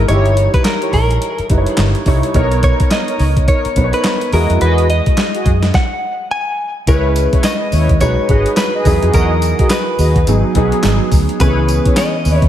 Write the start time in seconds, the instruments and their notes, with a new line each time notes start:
Already playing: grand piano G#3 D#4 E4 A#4
0.08 fingered electric bass G1, grand piano E3 D#4 E4 C#5, analog polysynth E4 G4 C#5, clean electric guitar C#5, closed hi-hat
0.15 grand piano G3
0.26 closed hi-hat
0.37 closed hi-hat
0.54 clean electric guitar B4, kick, closed hi-hat
0.65 clean electric guitar A#4, snare, clap, closed hi-hat
0.82 analog polysynth E4 G4 C#5, closed hi-hat
0.93 fingered electric bass A#1, clean electric guitar A#4, kick, open hi-hat
1.11 closed hi-hat
1.22 closed hi-hat
1.39 muted fingered electric bass stroke, closed hi-hat
1.50 fingered electric bass F#1, grand piano G3 D#4 E4 B4, kick, closed hi-hat
1.57 grand piano C#5
1.66 closed hi-hat
1.77 fingered electric bass G1, snare, clap, closed hi-hat
1.95 closed hi-hat
2.06 fingered electric bass C2, grand piano G3 D#4 E4 C#5, kick, open hi-hat
2.23 closed hi-hat
2.34 fingered electric bass B1, grand piano B3 D#4 A#4 C#5, analog polysynth D#4 A#4 C#5, kick, closed hi-hat
2.52 closed hi-hat
2.63 clean electric guitar C#5, kick, closed hi-hat
2.80 kick, closed hi-hat
2.91 clean electric guitar D#5, snare, clap, closed hi-hat
3.08 analog polysynth D#4 A#4 C#5, closed hi-hat
3.19 fingered electric bass C#2, open hi-hat
3.37 kick, closed hi-hat
3.48 analog polysynth D#4 A#4 C#5, clean electric guitar C#5, kick, closed hi-hat
3.65 muted fingered electric bass stroke, closed hi-hat
3.76 fingered electric bass B1, grand piano B3 D#4 B4 C5, kick, closed hi-hat
3.84 grand piano C#5
3.93 analog polysynth D#4 A#4 C#5, clean electric guitar B4, closed hi-hat
4.04 snare, clap, closed hi-hat
4.21 closed hi-hat
4.33 fingered electric bass E2, grand piano G#3 E4 F#4 D#5, analog polysynth F#4 G#4 D#5, clean electric guitar A#4, open hi-hat
4.50 fingered electric bass F2, closed hi-hat
4.61 fingered electric bass E2, analog polysynth F#4 G#4 D#5, clean electric guitar B4, closed hi-hat
4.78 closed hi-hat
4.90 clean electric guitar D#5, closed hi-hat
5.06 kick, closed hi-hat
5.17 snare, clap, closed hi-hat
5.34 analog polysynth F#4 G#4 D#5, closed hi-hat
5.46 fingered electric bass F#2, kick, closed hi-hat
5.63 snare, closed hi-hat
5.74 clean electric guitar F#5, kick, snare
6.31 clean electric guitar G#5
6.87 fingered electric bass C#2, grand piano G#3 C#4 E4 B4, analog polysynth E4 B4 C#5, clean electric guitar B4, kick, closed hi-hat, tambourine
7.16 closed hi-hat, tambourine
7.33 analog polysynth E4 B4 C#5, kick, closed hi-hat
7.44 clean electric guitar D#5, snare, clap, closed hi-hat, tambourine
7.72 fingered electric bass D#2, analog polysynth E4 B4 C#5, open hi-hat, tambourine
7.89 kick, closed hi-hat
8.01 fingered electric bass B1, grand piano G#3 D#4 F#4 B4, clean electric guitar C#5, kick, closed hi-hat, tambourine
8.18 muted fingered electric bass stroke
8.29 fingered electric bass G#1, grand piano G#3 D#4 F#4 B4, analog polysynth G#4 B4 D#5, kick, closed hi-hat
8.46 closed hi-hat
8.57 clean electric guitar B4, snare, clap, closed hi-hat, tambourine
8.74 analog polysynth G#4 B4 D#5
8.85 fingered electric bass E2, grand piano F#3 D#4 E4 G#4, kick, open hi-hat, tambourine
9.02 fingered electric bass F2, analog polysynth F#4 G#4 D#5, closed hi-hat
9.13 fingered electric bass E2, analog polysynth F#4 G#4 D#5, clean electric guitar A#4, kick, closed hi-hat, tambourine
9.42 closed hi-hat, tambourine
9.59 analog polysynth F#4 G#4 D#5, kick, closed hi-hat
9.70 clean electric guitar B4, snare, clap, closed hi-hat, tambourine
9.98 fingered electric bass D#2, analog polysynth F#4 G#4 D#5, open hi-hat, tambourine
10.16 kick, closed hi-hat
10.27 fingered electric bass G#1, grand piano F#3 B3 D#4 G#4, closed hi-hat, tambourine
10.44 muted fingered electric bass stroke
10.55 fingered electric bass B1, grand piano F#3 B3 D#4 G#4, analog polysynth F#4 G#4 B4, kick, closed hi-hat
10.72 closed hi-hat
10.83 fingered electric bass G#1, snare, clap, closed hi-hat, tambourine
11.12 fingered electric bass D2, kick, open hi-hat, tambourine
11.29 closed hi-hat
11.40 fingered electric bass C#2, grand piano E3 B3 C#4 G#4, analog polysynth E4 B4 C#5, clean electric guitar B4, kick, closed hi-hat, tambourine
11.68 closed hi-hat, tambourine
11.85 analog polysynth E4 B4 C#5, kick, closed hi-hat
11.97 clean electric guitar D#5, snare, clap, closed hi-hat, tambourine
12.25 fingered electric bass D#2, analog polysynth E4 B4 C#5, open hi-hat, tambourine
12.39 clean electric guitar C#5, kick, closed hi-hat